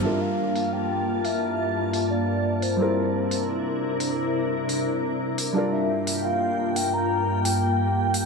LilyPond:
<<
  \new Staff \with { instrumentName = "Soft synth lead" } { \time 4/4 \key g \dorian \tempo 4 = 174 e''8 f''4. g''4. e''8~ | e''2 d''4. c''8~ | c''2~ c''8 r4. | r1 |
d''8 e''4 e''8 f''4. g''8 | bes''4. g''2~ g''8 | }
  \new Staff \with { instrumentName = "Ambient pad" } { \time 4/4 \key g \dorian <g, bes f' a''>1~ | <g, bes f' a''>1 | <c d' e' bes'>1~ | <c d' e' bes'>1 |
<g, bes f' g''>1~ | <g, bes f' g''>1 | }
  \new Staff \with { instrumentName = "Felt piano" } { \time 4/4 \key g \dorian <g d' f' bes'>1~ | <g d' f' bes'>1 | <g c' e' bes'>1~ | <g c' e' bes'>1 |
<g d' f' bes'>1~ | <g d' f' bes'>1 | }
  \new DrumStaff \with { instrumentName = "Drums" } \drummode { \time 4/4 r4 r8 hho8 r4 r8 hho8 | r4 r8 hho8 r4 r8 hho8 | r4 r8 hho8 r4 r8 hho8 | r4 r8 hho8 r4 r8 hho8 |
r4 r8 hho8 r4 r8 hho8 | r4 r8 hho8 r4 r8 hho8 | }
>>